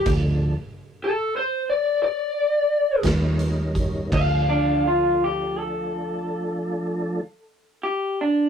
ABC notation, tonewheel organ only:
X:1
M:12/8
L:1/8
Q:3/8=54
K:Dm
V:1 name="Tonewheel organ"
[F,A,DA]2 z6 z [G,_D_EB]3 | [F,A,DA]12 |]